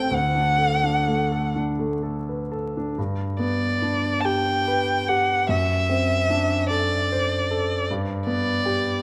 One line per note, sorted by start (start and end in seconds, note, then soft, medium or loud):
0.00 0.15 A3 soft
0.00 0.14 C4 soft
0.00 0.15 A4 soft
0.00 0.14 B4 soft
0.00 0.16 G5 medium
0.11 2.93 D2 soft
0.11 1.56 F#5 medium
0.35 0.73 D4 soft
0.58 0.97 A4 soft
0.84 1.22 D4 soft
1.08 1.46 A3 soft
1.32 1.70 A4 soft
1.56 1.94 D4 soft
1.79 2.18 A3 soft
2.03 2.42 A4 soft
2.29 2.53 B4 soft
2.52 2.89 A4 soft
2.77 2.98 D4 soft
2.98 5.44 G2 soft
3.39 4.06 B3 soft
3.39 4.22 D5 medium
3.82 4.48 D4 soft
4.20 4.27 A5 medium
4.25 4.91 G4 soft
4.25 5.09 G5 medium
4.68 5.33 B4 soft
5.08 5.49 G4 medium
5.08 5.48 F#5 medium
5.49 7.84 F#2 medium
5.49 6.68 E5 medium
5.89 6.54 C4 soft
6.30 6.94 D4 soft
6.70 7.34 A4 medium
6.70 7.86 D5 medium
7.12 7.74 C5 medium
7.51 7.89 A4 medium
7.91 9.02 G2 medium
8.27 8.88 B3 medium
8.27 9.02 D5 medium
8.66 9.02 G4 soft